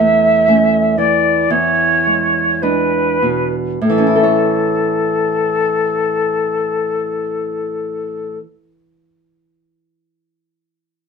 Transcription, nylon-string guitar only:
0, 0, Header, 1, 2, 480
1, 0, Start_track
1, 0, Key_signature, 3, "major"
1, 0, Tempo, 1008403
1, 713, Tempo, 1121495
1, 1193, Tempo, 1171875
1, 1681, Time_signature, 4, 2, 24, 8
1, 2153, Tempo, 1140684
1, 4729, End_track
2, 0, Start_track
2, 0, Title_t, "Nylon-string guitar"
2, 0, Program_c, 0, 24
2, 0, Note_on_c, 0, 40, 68
2, 0, Note_on_c, 0, 57, 49
2, 223, Note_off_c, 0, 57, 0
2, 229, Note_on_c, 0, 57, 49
2, 230, Note_on_c, 0, 61, 53
2, 446, Note_off_c, 0, 57, 0
2, 446, Note_off_c, 0, 61, 0
2, 467, Note_on_c, 0, 52, 44
2, 696, Note_off_c, 0, 40, 0
2, 715, Note_off_c, 0, 52, 0
2, 715, Note_on_c, 0, 40, 62
2, 958, Note_on_c, 0, 56, 44
2, 1190, Note_off_c, 0, 56, 0
2, 1195, Note_on_c, 0, 56, 44
2, 1198, Note_on_c, 0, 62, 49
2, 1422, Note_off_c, 0, 56, 0
2, 1422, Note_off_c, 0, 62, 0
2, 1440, Note_on_c, 0, 47, 42
2, 1666, Note_off_c, 0, 40, 0
2, 1681, Note_off_c, 0, 47, 0
2, 1683, Note_on_c, 0, 45, 62
2, 1716, Note_on_c, 0, 52, 51
2, 1751, Note_on_c, 0, 61, 54
2, 1786, Note_on_c, 0, 64, 51
2, 1822, Note_on_c, 0, 69, 51
2, 1853, Note_off_c, 0, 64, 0
2, 1854, Note_on_c, 0, 73, 49
2, 3587, Note_off_c, 0, 45, 0
2, 3621, Note_off_c, 0, 52, 0
2, 3657, Note_off_c, 0, 61, 0
2, 3730, Note_off_c, 0, 69, 0
2, 3763, Note_off_c, 0, 73, 0
2, 4729, End_track
0, 0, End_of_file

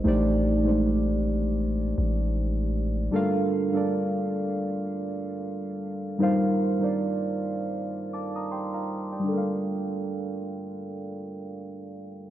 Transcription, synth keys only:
0, 0, Header, 1, 2, 480
1, 0, Start_track
1, 0, Key_signature, -2, "minor"
1, 0, Tempo, 769231
1, 34, Time_signature, 4, 2, 24, 8
1, 7676, End_track
2, 0, Start_track
2, 0, Title_t, "Synth keys"
2, 0, Program_c, 0, 88
2, 0, Control_c, 0, 64, 127
2, 22, Note_on_c, 0, 57, 107
2, 28, Note_on_c, 0, 63, 100
2, 35, Note_on_c, 0, 67, 92
2, 41, Control_c, 0, 64, 0
2, 42, Note_on_c, 0, 72, 95
2, 49, Note_on_c, 0, 74, 118
2, 140, Control_c, 0, 64, 127
2, 259, Note_off_c, 0, 57, 0
2, 262, Note_off_c, 0, 63, 0
2, 266, Note_off_c, 0, 67, 0
2, 269, Note_off_c, 0, 72, 0
2, 273, Note_off_c, 0, 74, 0
2, 401, Note_on_c, 0, 56, 60
2, 408, Note_on_c, 0, 63, 70
2, 415, Note_on_c, 0, 67, 76
2, 422, Note_on_c, 0, 72, 73
2, 429, Note_on_c, 0, 74, 85
2, 442, Note_off_c, 0, 56, 0
2, 442, Note_on_c, 0, 57, 80
2, 1005, Note_off_c, 0, 63, 0
2, 1009, Note_off_c, 0, 67, 0
2, 1012, Note_off_c, 0, 72, 0
2, 1015, Note_off_c, 0, 74, 0
2, 1022, Note_off_c, 0, 57, 0
2, 1941, Note_on_c, 0, 55, 107
2, 1948, Note_on_c, 0, 62, 97
2, 1955, Note_on_c, 0, 69, 97
2, 1962, Note_on_c, 0, 70, 94
2, 1964, Control_c, 0, 64, 0
2, 1969, Note_on_c, 0, 77, 116
2, 2068, Control_c, 0, 64, 127
2, 2179, Note_off_c, 0, 55, 0
2, 2182, Note_off_c, 0, 62, 0
2, 2186, Note_off_c, 0, 69, 0
2, 2189, Note_off_c, 0, 70, 0
2, 2193, Note_off_c, 0, 77, 0
2, 2321, Note_on_c, 0, 55, 81
2, 2328, Note_on_c, 0, 62, 75
2, 2335, Note_on_c, 0, 69, 73
2, 2342, Note_on_c, 0, 70, 71
2, 2349, Note_on_c, 0, 74, 87
2, 2921, Note_off_c, 0, 55, 0
2, 2925, Note_off_c, 0, 62, 0
2, 2929, Note_off_c, 0, 69, 0
2, 2932, Note_off_c, 0, 70, 0
2, 2936, Note_off_c, 0, 74, 0
2, 3859, Note_on_c, 0, 55, 102
2, 3867, Note_on_c, 0, 63, 95
2, 3874, Note_on_c, 0, 70, 95
2, 3881, Note_on_c, 0, 72, 95
2, 3883, Control_c, 0, 64, 0
2, 3888, Note_on_c, 0, 77, 117
2, 3980, Control_c, 0, 64, 127
2, 4098, Note_off_c, 0, 55, 0
2, 4102, Note_off_c, 0, 63, 0
2, 4105, Note_off_c, 0, 70, 0
2, 4109, Note_off_c, 0, 72, 0
2, 4112, Note_off_c, 0, 77, 0
2, 4239, Note_on_c, 0, 55, 77
2, 4247, Note_on_c, 0, 63, 70
2, 4253, Note_on_c, 0, 70, 70
2, 4260, Note_on_c, 0, 72, 69
2, 4267, Note_on_c, 0, 74, 91
2, 4840, Note_off_c, 0, 55, 0
2, 4844, Note_off_c, 0, 63, 0
2, 4848, Note_off_c, 0, 70, 0
2, 4851, Note_off_c, 0, 72, 0
2, 4854, Note_off_c, 0, 74, 0
2, 5075, Note_on_c, 0, 86, 63
2, 5079, Note_on_c, 0, 81, 50
2, 5207, Note_off_c, 0, 86, 0
2, 5209, Note_off_c, 0, 81, 0
2, 5213, Note_on_c, 0, 87, 65
2, 5216, Note_on_c, 0, 82, 56
2, 5309, Note_off_c, 0, 87, 0
2, 5311, Note_off_c, 0, 82, 0
2, 5312, Note_on_c, 0, 84, 69
2, 5317, Note_on_c, 0, 79, 55
2, 5446, Note_off_c, 0, 84, 0
2, 5448, Note_off_c, 0, 79, 0
2, 5452, Note_on_c, 0, 82, 63
2, 5456, Note_on_c, 0, 77, 51
2, 5681, Note_off_c, 0, 82, 0
2, 5683, Note_off_c, 0, 77, 0
2, 5692, Note_on_c, 0, 79, 55
2, 5696, Note_on_c, 0, 74, 47
2, 5737, Note_on_c, 0, 55, 72
2, 5765, Note_on_c, 0, 62, 62
2, 5793, Note_on_c, 0, 69, 64
2, 5803, Control_c, 0, 64, 0
2, 5821, Note_on_c, 0, 70, 65
2, 5849, Note_on_c, 0, 77, 80
2, 5908, Control_c, 0, 64, 127
2, 5921, Note_off_c, 0, 79, 0
2, 5923, Note_off_c, 0, 74, 0
2, 7676, Note_off_c, 0, 55, 0
2, 7676, Note_off_c, 0, 62, 0
2, 7676, Note_off_c, 0, 69, 0
2, 7676, Note_off_c, 0, 70, 0
2, 7676, Note_off_c, 0, 77, 0
2, 7676, End_track
0, 0, End_of_file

